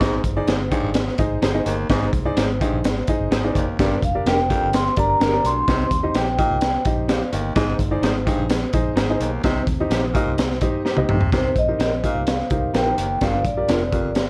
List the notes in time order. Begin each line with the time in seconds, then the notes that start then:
0.00 G#1 G#2 D#4 G#4 C5 D#5, kick, snare, closed hi-hat
0.24 G1, kick, closed hi-hat
0.36 D#4 G#4 C5 D5
0.47 G1 D#4 G#4 C5, snare, closed hi-hat
0.71 G2 D#4 G#4 C5 D5, kick, closed hi-hat
0.83 G#1
0.94 snare, closed hi-hat
1.08 snare
1.18 G#1 D#4 G#4 C5 D#5, kick, closed hi-hat
1.42 G1 D#4 G#4 C5, snare, closed hi-hat
1.54 D#4 G#4 C5 D#5
1.66 G1 D#2, closed hi-hat
1.89 G#1 G#2 D#4 G#4 C5 D#5, kick, snare, closed hi-hat
2.13 C2, kick, closed hi-hat
2.25 D#4 G#4 C5 D5
2.37 G#1 D#4 G#4 C5, snare, closed hi-hat
2.61 G2 D#4 G#4 C5 D#5, kick, closed hi-hat
2.72 A#1
2.84 G#1, snare, closed hi-hat
2.97 snare
3.07 D#4 G#4 C5 D#5, muted fingered electric bass stroke, kick, closed hi-hat
3.19 G1
3.31 G#1 D#4 G#4 C5, snare, closed hi-hat
3.44 D#4 G#4 C5 D5
3.55 F#1 D#2, kick, closed hi-hat
3.79 G1 G2 D4 G4 A#4 D5, kick, snare, closed hi-hat
4.02 F1 F5, kick, closed hi-hat
4.15 D4 G4 A#4 D5
4.26 F1 D4 G4 A#4 G5, snare, closed hi-hat
4.49 F2 D4 G4 A#4 C5, kick, closed hi-hat
4.62 G1
4.73 C6, snare, closed hi-hat
4.96 G1 D4 G4 A#4 D5 A#5, kick, closed hi-hat
5.20 G1 D4 G4 A#4, snare, closed hi-hat
5.33 D4 G4 A#4 D5
5.44 B1 D2 C6, closed hi-hat
5.67 C2 C3 D#4 G4 C5 D#5, kick, snare, closed hi-hat
5.91 D#2, kick, closed hi-hat
6.03 D#4 G4 C5 D#5
6.15 A#1 D#4 G4 C5 G5, snare, closed hi-hat
6.38 A#2 D#4 G4 C5 D#5 G5, kick, closed hi-hat
6.50 C2
6.61 snare, closed hi-hat
6.85 A#1 D#4 G4 C5 D#5, kick, closed hi-hat
7.08 D#4 G4 C5 D5 F5, snare, closed hi-hat
7.32 G1 D#2 D#5 G5, closed hi-hat
7.55 G#1 G#2 D#4 G#4 C5 D#5, kick, snare, closed hi-hat
7.79 G1, kick, closed hi-hat
7.91 D#4 G#4 C5 D5
8.02 G#1 D#4 G#4 C5, snare, closed hi-hat
8.26 G2 D#4 G#4 C5 D#5, kick, closed hi-hat
8.38 A#1
8.50 snare, closed hi-hat
8.73 A#1 D#4 G#4 C5 D#5, kick, closed hi-hat
8.96 G#1 D#4 G#4 C5, snare, closed hi-hat
9.10 D#4 G#4 C5 D#5
9.20 B1 D#2, closed hi-hat
9.43 C2 C3 D#4 G4 C5 D#5, kick, snare, closed hi-hat
9.67 D#2, kick, closed hi-hat
9.80 D#4 G4 C5 D#5
9.90 A#1 D#4 G4 C5, snare, closed hi-hat
10.14 A#2 D#4 G4 C5 D#5, kick, closed hi-hat
10.26 C2
10.38 snare, closed hi-hat
10.51 snare
10.61 A#1 D#4 G4 C5 D#5, kick, closed hi-hat
10.85 D#4 G4 C5, snare
10.97 C2 D#4 G4 C5 D#5, high tom
11.09 A#1 C3, mid tom
11.21 B1, floor tom
11.32 C2 C3 D#4 G4 A#4 C5, kick, snare, closed hi-hat
11.56 A#1 D#5, kick, closed hi-hat
11.68 D#4 G4 A#4 C5
11.79 A#1 D#4 A#4 C5, snare, closed hi-hat
12.03 A#2 D#4 G4 A#4 C5 F5, kick, closed hi-hat
12.15 C2
12.27 snare, closed hi-hat
12.40 snare
12.50 C2 D#4 G4 A#4 C5, kick, closed hi-hat
12.74 A#1 D#4 A#4 C5 G5, snare, closed hi-hat
12.86 D#4 G4 A#4 C5
12.98 F#1 D#2, closed hi-hat
13.21 G1 G2 F4 G4 A#4 D5 F5, kick, snare, closed hi-hat
13.45 A#1 D5, kick, closed hi-hat
13.57 F4 G4 A#4 D5
13.68 F1 D4 F4 A#4, snare, closed hi-hat
13.92 F2 F4 G4 A#4 F5, kick, closed hi-hat
14.04 G1
14.15 snare, closed hi-hat